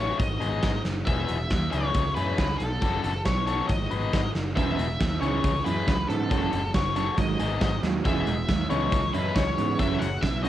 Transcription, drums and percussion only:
0.19 kick, closed hi-hat
0.41 closed hi-hat
0.63 kick, snare, closed hi-hat
0.85 snare, closed hi-hat
1.07 kick, closed hi-hat
1.28 closed hi-hat
1.50 kick, snare, closed hi-hat
1.72 closed hi-hat
1.94 kick, closed hi-hat
2.16 closed hi-hat
2.38 kick, snare, closed hi-hat
2.60 closed hi-hat
2.82 kick, closed hi-hat
3.04 closed hi-hat
3.25 kick, snare, closed hi-hat
3.47 closed hi-hat
3.69 kick, closed hi-hat
3.91 closed hi-hat
4.13 kick, snare, closed hi-hat
4.35 snare, closed hi-hat
4.57 kick, closed hi-hat
4.79 closed hi-hat
5.01 kick, snare, closed hi-hat
5.23 closed hi-hat
5.44 kick, closed hi-hat
5.66 closed hi-hat
5.88 kick, snare, closed hi-hat
6.10 closed hi-hat
6.31 kick, closed hi-hat
6.53 closed hi-hat
6.74 kick, snare, closed hi-hat
6.96 closed hi-hat
7.18 kick, closed hi-hat
7.40 closed hi-hat
7.61 kick, snare, closed hi-hat
7.83 snare, closed hi-hat
8.05 kick, closed hi-hat
8.27 closed hi-hat
8.48 kick, snare, closed hi-hat
8.70 closed hi-hat
8.92 kick, closed hi-hat
9.14 closed hi-hat
9.36 kick, snare, closed hi-hat
9.58 closed hi-hat
9.79 kick, closed hi-hat
10.02 closed hi-hat
10.23 kick, snare, closed hi-hat
10.45 closed hi-hat

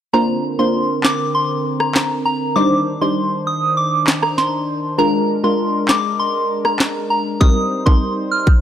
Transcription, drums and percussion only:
1.04 snare, clap
1.80 cross-stick
1.95 snare, clap
4.07 snare, clap
4.23 cross-stick
4.38 snare
5.89 snare, clap
6.65 cross-stick
6.80 snare, clap
7.41 kick
7.87 kick
8.47 kick

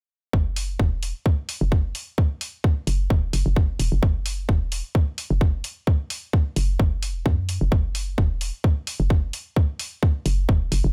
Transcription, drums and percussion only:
0.33 kick
0.56 open hi-hat
0.80 kick
1.03 open hi-hat
1.26 kick
1.49 open hi-hat
1.72 kick
1.95 open hi-hat
2.18 kick
2.41 open hi-hat
2.64 kick
2.87 open hi-hat
3.10 kick
3.33 open hi-hat
3.56 kick
3.80 open hi-hat
4.03 kick
4.26 open hi-hat
4.49 kick
4.72 open hi-hat
4.95 kick
5.18 open hi-hat
5.41 kick
5.64 open hi-hat
5.87 kick
6.10 open hi-hat
6.33 kick
6.56 open hi-hat
6.79 kick
7.03 open hi-hat
7.26 kick
7.49 open hi-hat
7.72 kick
7.95 open hi-hat
8.18 kick
8.41 open hi-hat
8.64 kick
8.87 open hi-hat
9.10 kick
9.33 open hi-hat
9.56 kick
9.79 open hi-hat
10.03 kick
10.26 open hi-hat
10.49 kick
10.72 open hi-hat

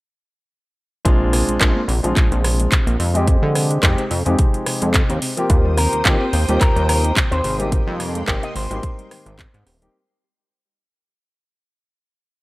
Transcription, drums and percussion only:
1.05 kick, closed hi-hat
1.33 cross-stick, open hi-hat
1.49 closed hi-hat
1.61 kick, clap, closed hi-hat, cowbell
1.89 open hi-hat
2.04 closed hi-hat
2.16 kick, clap, closed hi-hat
2.32 closed hi-hat
2.44 cross-stick, open hi-hat
2.60 closed hi-hat
2.72 kick, clap, closed hi-hat
2.87 closed hi-hat
3.00 open hi-hat
3.15 closed hi-hat
3.27 kick, closed hi-hat
3.55 cross-stick, open hi-hat
3.71 closed hi-hat
3.83 kick, clap, closed hi-hat, cowbell
3.98 closed hi-hat
4.11 open hi-hat
4.26 closed hi-hat
4.39 kick, closed hi-hat
4.54 closed hi-hat
4.66 cross-stick, open hi-hat
4.82 closed hi-hat
4.94 kick, clap, closed hi-hat
5.10 closed hi-hat
5.22 open hi-hat
5.37 closed hi-hat
5.50 kick, closed hi-hat
5.78 cross-stick, open hi-hat
5.93 closed hi-hat
6.05 kick, clap, closed hi-hat, cowbell
6.33 open hi-hat
6.49 closed hi-hat
6.61 kick, clap, closed hi-hat
6.77 closed hi-hat
6.89 cross-stick, open hi-hat
7.04 closed hi-hat
7.17 kick, clap, closed hi-hat
7.32 closed hi-hat
7.44 open hi-hat
7.60 closed hi-hat
7.72 kick, closed hi-hat
8.00 cross-stick, open hi-hat
8.15 closed hi-hat
8.28 kick, clap, closed hi-hat, cowbell
8.43 closed hi-hat
8.56 open hi-hat
8.71 closed hi-hat
8.83 kick, closed hi-hat
8.99 closed hi-hat
9.11 cross-stick, open hi-hat
9.26 closed hi-hat
9.39 kick, clap, closed hi-hat
9.54 closed hi-hat
9.67 open hi-hat
9.82 closed hi-hat

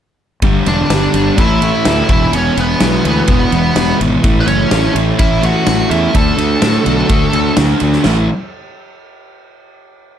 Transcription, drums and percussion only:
0.42 kick, ride
0.66 ride
0.90 snare, ride
1.14 ride
1.38 kick, ride
1.62 ride
1.85 snare, ride
2.09 kick, ride
2.33 ride
2.57 ride
2.80 snare, ride
3.05 ride
3.28 kick, ride
3.52 ride
3.76 snare, ride
4.01 ride
4.24 kick, ride
4.48 ride
4.71 snare, ride
4.96 ride
5.19 kick, ride
5.43 ride
5.67 snare, ride
5.91 ride
6.15 kick, ride
6.38 ride
6.62 snare, ride
6.86 ride
7.09 kick, ride
7.33 ride
7.57 snare, ride
7.80 ride
7.92 snare
8.04 snare, china

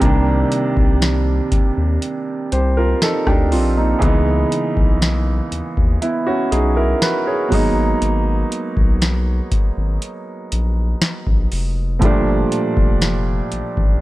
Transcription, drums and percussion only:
0.02 kick, closed hi-hat
0.52 closed hi-hat
0.77 kick
1.02 snare, closed hi-hat
1.52 kick, closed hi-hat
2.02 closed hi-hat
2.52 closed hi-hat
3.02 snare, closed hi-hat
3.27 kick, cross-stick
3.52 open hi-hat
4.02 kick, closed hi-hat
4.52 closed hi-hat
4.77 kick
5.02 snare, closed hi-hat
5.52 closed hi-hat
5.77 kick
6.02 closed hi-hat
6.52 closed hi-hat
7.02 snare, closed hi-hat
7.52 kick, open hi-hat
8.02 closed hi-hat
8.52 closed hi-hat
8.77 kick
9.02 snare, closed hi-hat
9.52 kick, closed hi-hat
10.02 closed hi-hat
10.52 closed hi-hat
11.02 snare, closed hi-hat
11.27 kick
11.52 open hi-hat
12.02 kick, closed hi-hat
12.52 closed hi-hat
12.77 kick
13.02 snare, closed hi-hat
13.52 closed hi-hat
13.77 kick

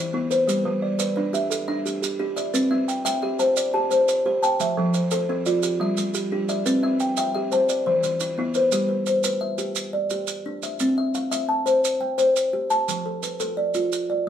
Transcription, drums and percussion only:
0.31 maracas
0.49 maracas
0.99 maracas
1.34 maracas
1.51 maracas
1.86 maracas
2.03 maracas
2.37 maracas
2.54 maracas
2.89 maracas
3.06 maracas
3.39 maracas
3.57 maracas
3.91 maracas
4.08 maracas
4.43 maracas
4.60 maracas
4.94 maracas
5.11 maracas
5.46 maracas
5.63 maracas
5.97 maracas
6.14 maracas
6.49 maracas
6.66 maracas
7.00 maracas
7.17 maracas
7.52 maracas
7.69 maracas
8.03 maracas
8.20 maracas
8.54 maracas
8.72 maracas
9.06 maracas
9.24 maracas
9.58 maracas
9.75 maracas
10.10 maracas
10.27 maracas
10.63 maracas
10.80 maracas
11.15 maracas
11.32 maracas
11.67 maracas
11.85 maracas
12.19 maracas
12.36 maracas
12.71 maracas
12.89 maracas
13.23 maracas
13.40 maracas
13.74 maracas
13.92 maracas

